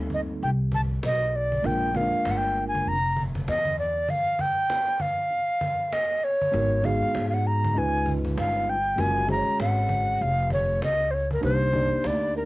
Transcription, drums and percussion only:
0, 0, Header, 1, 2, 480
1, 0, Start_track
1, 0, Tempo, 612245
1, 1283, Time_signature, 4, 2, 24, 8
1, 9764, End_track
2, 0, Start_track
2, 0, Title_t, "Cajon"
2, 80, Note_on_c, 9, 36, 80
2, 158, Note_off_c, 9, 36, 0
2, 325, Note_on_c, 9, 38, 49
2, 404, Note_off_c, 9, 38, 0
2, 562, Note_on_c, 9, 36, 89
2, 641, Note_off_c, 9, 36, 0
2, 809, Note_on_c, 9, 38, 114
2, 888, Note_off_c, 9, 38, 0
2, 1192, Note_on_c, 9, 36, 74
2, 1270, Note_off_c, 9, 36, 0
2, 1285, Note_on_c, 9, 38, 53
2, 1287, Note_on_c, 9, 36, 95
2, 1364, Note_off_c, 9, 38, 0
2, 1365, Note_off_c, 9, 36, 0
2, 1525, Note_on_c, 9, 36, 100
2, 1603, Note_off_c, 9, 36, 0
2, 1766, Note_on_c, 9, 38, 114
2, 1844, Note_off_c, 9, 38, 0
2, 2011, Note_on_c, 9, 38, 38
2, 2089, Note_off_c, 9, 38, 0
2, 2156, Note_on_c, 9, 36, 91
2, 2234, Note_off_c, 9, 36, 0
2, 2246, Note_on_c, 9, 38, 51
2, 2324, Note_off_c, 9, 38, 0
2, 2482, Note_on_c, 9, 36, 87
2, 2560, Note_off_c, 9, 36, 0
2, 2628, Note_on_c, 9, 36, 93
2, 2707, Note_off_c, 9, 36, 0
2, 2728, Note_on_c, 9, 38, 112
2, 2806, Note_off_c, 9, 38, 0
2, 2863, Note_on_c, 9, 36, 96
2, 2941, Note_off_c, 9, 36, 0
2, 2965, Note_on_c, 9, 38, 42
2, 3044, Note_off_c, 9, 38, 0
2, 3103, Note_on_c, 9, 38, 23
2, 3181, Note_off_c, 9, 38, 0
2, 3204, Note_on_c, 9, 36, 99
2, 3204, Note_on_c, 9, 38, 57
2, 3282, Note_off_c, 9, 38, 0
2, 3283, Note_off_c, 9, 36, 0
2, 3442, Note_on_c, 9, 36, 92
2, 3521, Note_off_c, 9, 36, 0
2, 3683, Note_on_c, 9, 38, 108
2, 3762, Note_off_c, 9, 38, 0
2, 3917, Note_on_c, 9, 36, 86
2, 3996, Note_off_c, 9, 36, 0
2, 4161, Note_on_c, 9, 38, 48
2, 4239, Note_off_c, 9, 38, 0
2, 4399, Note_on_c, 9, 36, 95
2, 4477, Note_off_c, 9, 36, 0
2, 4645, Note_on_c, 9, 38, 116
2, 4724, Note_off_c, 9, 38, 0
2, 5029, Note_on_c, 9, 36, 76
2, 5107, Note_off_c, 9, 36, 0
2, 5124, Note_on_c, 9, 36, 97
2, 5125, Note_on_c, 9, 38, 51
2, 5202, Note_off_c, 9, 36, 0
2, 5203, Note_off_c, 9, 38, 0
2, 5362, Note_on_c, 9, 36, 95
2, 5440, Note_off_c, 9, 36, 0
2, 5602, Note_on_c, 9, 38, 112
2, 5681, Note_off_c, 9, 38, 0
2, 5848, Note_on_c, 9, 38, 38
2, 5927, Note_off_c, 9, 38, 0
2, 5992, Note_on_c, 9, 36, 88
2, 6070, Note_off_c, 9, 36, 0
2, 6080, Note_on_c, 9, 38, 48
2, 6158, Note_off_c, 9, 38, 0
2, 6317, Note_on_c, 9, 36, 90
2, 6396, Note_off_c, 9, 36, 0
2, 6464, Note_on_c, 9, 36, 89
2, 6543, Note_off_c, 9, 36, 0
2, 6565, Note_on_c, 9, 38, 113
2, 6644, Note_off_c, 9, 38, 0
2, 7041, Note_on_c, 9, 36, 98
2, 7044, Note_on_c, 9, 38, 53
2, 7119, Note_off_c, 9, 36, 0
2, 7122, Note_off_c, 9, 38, 0
2, 7280, Note_on_c, 9, 36, 98
2, 7358, Note_off_c, 9, 36, 0
2, 7525, Note_on_c, 9, 38, 119
2, 7603, Note_off_c, 9, 38, 0
2, 7754, Note_on_c, 9, 36, 90
2, 7833, Note_off_c, 9, 36, 0
2, 8001, Note_on_c, 9, 38, 49
2, 8080, Note_off_c, 9, 38, 0
2, 8235, Note_on_c, 9, 36, 90
2, 8314, Note_off_c, 9, 36, 0
2, 8484, Note_on_c, 9, 38, 117
2, 8563, Note_off_c, 9, 38, 0
2, 8865, Note_on_c, 9, 36, 82
2, 8944, Note_off_c, 9, 36, 0
2, 8960, Note_on_c, 9, 36, 92
2, 8963, Note_on_c, 9, 38, 57
2, 9039, Note_off_c, 9, 36, 0
2, 9041, Note_off_c, 9, 38, 0
2, 9199, Note_on_c, 9, 36, 96
2, 9277, Note_off_c, 9, 36, 0
2, 9442, Note_on_c, 9, 38, 115
2, 9520, Note_off_c, 9, 38, 0
2, 9689, Note_on_c, 9, 38, 37
2, 9764, Note_off_c, 9, 38, 0
2, 9764, End_track
0, 0, End_of_file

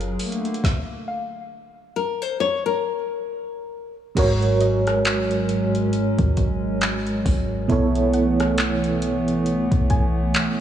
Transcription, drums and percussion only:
0, 0, Header, 1, 2, 480
1, 0, Start_track
1, 0, Tempo, 882353
1, 347, Time_signature, 4, 2, 24, 8
1, 5769, End_track
2, 0, Start_track
2, 0, Title_t, "Drums"
2, 3, Note_on_c, 9, 42, 44
2, 58, Note_off_c, 9, 42, 0
2, 105, Note_on_c, 9, 42, 55
2, 107, Note_on_c, 9, 46, 72
2, 160, Note_off_c, 9, 42, 0
2, 161, Note_off_c, 9, 46, 0
2, 175, Note_on_c, 9, 42, 58
2, 230, Note_off_c, 9, 42, 0
2, 245, Note_on_c, 9, 42, 52
2, 296, Note_off_c, 9, 42, 0
2, 296, Note_on_c, 9, 42, 52
2, 347, Note_on_c, 9, 36, 106
2, 350, Note_off_c, 9, 42, 0
2, 352, Note_on_c, 9, 38, 88
2, 401, Note_off_c, 9, 36, 0
2, 406, Note_off_c, 9, 38, 0
2, 2267, Note_on_c, 9, 36, 113
2, 2267, Note_on_c, 9, 42, 67
2, 2267, Note_on_c, 9, 49, 105
2, 2321, Note_off_c, 9, 36, 0
2, 2321, Note_off_c, 9, 49, 0
2, 2322, Note_off_c, 9, 42, 0
2, 2407, Note_on_c, 9, 42, 50
2, 2462, Note_off_c, 9, 42, 0
2, 2505, Note_on_c, 9, 42, 58
2, 2560, Note_off_c, 9, 42, 0
2, 2648, Note_on_c, 9, 42, 53
2, 2651, Note_on_c, 9, 37, 84
2, 2703, Note_off_c, 9, 42, 0
2, 2706, Note_off_c, 9, 37, 0
2, 2746, Note_on_c, 9, 42, 79
2, 2753, Note_on_c, 9, 39, 124
2, 2801, Note_off_c, 9, 42, 0
2, 2807, Note_off_c, 9, 39, 0
2, 2887, Note_on_c, 9, 42, 47
2, 2942, Note_off_c, 9, 42, 0
2, 2986, Note_on_c, 9, 42, 74
2, 3040, Note_off_c, 9, 42, 0
2, 3127, Note_on_c, 9, 42, 48
2, 3181, Note_off_c, 9, 42, 0
2, 3225, Note_on_c, 9, 42, 78
2, 3279, Note_off_c, 9, 42, 0
2, 3365, Note_on_c, 9, 36, 100
2, 3365, Note_on_c, 9, 42, 52
2, 3419, Note_off_c, 9, 36, 0
2, 3419, Note_off_c, 9, 42, 0
2, 3465, Note_on_c, 9, 42, 69
2, 3467, Note_on_c, 9, 36, 97
2, 3519, Note_off_c, 9, 42, 0
2, 3521, Note_off_c, 9, 36, 0
2, 3705, Note_on_c, 9, 42, 59
2, 3712, Note_on_c, 9, 39, 122
2, 3760, Note_off_c, 9, 42, 0
2, 3766, Note_off_c, 9, 39, 0
2, 3844, Note_on_c, 9, 42, 47
2, 3898, Note_off_c, 9, 42, 0
2, 3947, Note_on_c, 9, 36, 105
2, 3948, Note_on_c, 9, 46, 72
2, 4001, Note_off_c, 9, 36, 0
2, 4002, Note_off_c, 9, 46, 0
2, 4187, Note_on_c, 9, 36, 103
2, 4187, Note_on_c, 9, 42, 64
2, 4241, Note_off_c, 9, 36, 0
2, 4241, Note_off_c, 9, 42, 0
2, 4327, Note_on_c, 9, 42, 49
2, 4381, Note_off_c, 9, 42, 0
2, 4425, Note_on_c, 9, 42, 60
2, 4480, Note_off_c, 9, 42, 0
2, 4568, Note_on_c, 9, 42, 51
2, 4572, Note_on_c, 9, 37, 90
2, 4623, Note_off_c, 9, 42, 0
2, 4626, Note_off_c, 9, 37, 0
2, 4666, Note_on_c, 9, 42, 80
2, 4672, Note_on_c, 9, 39, 121
2, 4720, Note_off_c, 9, 42, 0
2, 4727, Note_off_c, 9, 39, 0
2, 4808, Note_on_c, 9, 42, 46
2, 4863, Note_off_c, 9, 42, 0
2, 4907, Note_on_c, 9, 42, 71
2, 4961, Note_off_c, 9, 42, 0
2, 5048, Note_on_c, 9, 42, 52
2, 5102, Note_off_c, 9, 42, 0
2, 5146, Note_on_c, 9, 42, 80
2, 5200, Note_off_c, 9, 42, 0
2, 5285, Note_on_c, 9, 36, 94
2, 5286, Note_on_c, 9, 42, 53
2, 5339, Note_off_c, 9, 36, 0
2, 5340, Note_off_c, 9, 42, 0
2, 5385, Note_on_c, 9, 42, 63
2, 5387, Note_on_c, 9, 36, 95
2, 5439, Note_off_c, 9, 42, 0
2, 5441, Note_off_c, 9, 36, 0
2, 5626, Note_on_c, 9, 42, 59
2, 5632, Note_on_c, 9, 39, 119
2, 5680, Note_off_c, 9, 42, 0
2, 5687, Note_off_c, 9, 39, 0
2, 5769, End_track
0, 0, End_of_file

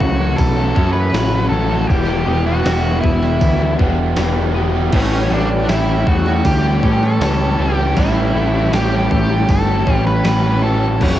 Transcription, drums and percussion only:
0, 0, Header, 1, 2, 480
1, 0, Start_track
1, 0, Tempo, 759494
1, 1199, Time_signature, 4, 2, 24, 8
1, 7075, End_track
2, 0, Start_track
2, 0, Title_t, "Drums"
2, 3, Note_on_c, 9, 36, 83
2, 67, Note_off_c, 9, 36, 0
2, 243, Note_on_c, 9, 36, 117
2, 243, Note_on_c, 9, 46, 69
2, 306, Note_off_c, 9, 36, 0
2, 306, Note_off_c, 9, 46, 0
2, 483, Note_on_c, 9, 36, 101
2, 546, Note_off_c, 9, 36, 0
2, 724, Note_on_c, 9, 46, 62
2, 726, Note_on_c, 9, 38, 125
2, 787, Note_off_c, 9, 46, 0
2, 789, Note_off_c, 9, 38, 0
2, 1202, Note_on_c, 9, 36, 110
2, 1204, Note_on_c, 9, 46, 64
2, 1265, Note_off_c, 9, 36, 0
2, 1267, Note_off_c, 9, 46, 0
2, 1679, Note_on_c, 9, 46, 68
2, 1681, Note_on_c, 9, 38, 121
2, 1742, Note_off_c, 9, 46, 0
2, 1745, Note_off_c, 9, 38, 0
2, 1919, Note_on_c, 9, 36, 91
2, 1982, Note_off_c, 9, 36, 0
2, 2039, Note_on_c, 9, 38, 34
2, 2103, Note_off_c, 9, 38, 0
2, 2155, Note_on_c, 9, 46, 67
2, 2157, Note_on_c, 9, 36, 125
2, 2218, Note_off_c, 9, 46, 0
2, 2220, Note_off_c, 9, 36, 0
2, 2397, Note_on_c, 9, 36, 94
2, 2460, Note_off_c, 9, 36, 0
2, 2631, Note_on_c, 9, 46, 68
2, 2633, Note_on_c, 9, 38, 114
2, 2694, Note_off_c, 9, 46, 0
2, 2697, Note_off_c, 9, 38, 0
2, 3112, Note_on_c, 9, 49, 105
2, 3116, Note_on_c, 9, 36, 116
2, 3175, Note_off_c, 9, 49, 0
2, 3179, Note_off_c, 9, 36, 0
2, 3595, Note_on_c, 9, 46, 65
2, 3598, Note_on_c, 9, 38, 115
2, 3659, Note_off_c, 9, 46, 0
2, 3661, Note_off_c, 9, 38, 0
2, 3835, Note_on_c, 9, 36, 90
2, 3898, Note_off_c, 9, 36, 0
2, 3955, Note_on_c, 9, 38, 32
2, 4019, Note_off_c, 9, 38, 0
2, 4075, Note_on_c, 9, 46, 68
2, 4076, Note_on_c, 9, 36, 113
2, 4138, Note_off_c, 9, 46, 0
2, 4139, Note_off_c, 9, 36, 0
2, 4317, Note_on_c, 9, 36, 91
2, 4380, Note_off_c, 9, 36, 0
2, 4441, Note_on_c, 9, 38, 35
2, 4504, Note_off_c, 9, 38, 0
2, 4558, Note_on_c, 9, 46, 66
2, 4560, Note_on_c, 9, 38, 120
2, 4621, Note_off_c, 9, 46, 0
2, 4623, Note_off_c, 9, 38, 0
2, 5034, Note_on_c, 9, 46, 62
2, 5036, Note_on_c, 9, 36, 119
2, 5098, Note_off_c, 9, 46, 0
2, 5099, Note_off_c, 9, 36, 0
2, 5519, Note_on_c, 9, 46, 65
2, 5521, Note_on_c, 9, 38, 121
2, 5582, Note_off_c, 9, 46, 0
2, 5584, Note_off_c, 9, 38, 0
2, 5758, Note_on_c, 9, 36, 90
2, 5821, Note_off_c, 9, 36, 0
2, 5996, Note_on_c, 9, 46, 66
2, 5998, Note_on_c, 9, 36, 126
2, 6059, Note_off_c, 9, 46, 0
2, 6061, Note_off_c, 9, 36, 0
2, 6239, Note_on_c, 9, 36, 100
2, 6302, Note_off_c, 9, 36, 0
2, 6363, Note_on_c, 9, 38, 34
2, 6426, Note_off_c, 9, 38, 0
2, 6476, Note_on_c, 9, 46, 66
2, 6479, Note_on_c, 9, 38, 114
2, 6540, Note_off_c, 9, 46, 0
2, 6542, Note_off_c, 9, 38, 0
2, 6958, Note_on_c, 9, 57, 111
2, 6960, Note_on_c, 9, 36, 126
2, 7021, Note_off_c, 9, 57, 0
2, 7023, Note_off_c, 9, 36, 0
2, 7075, End_track
0, 0, End_of_file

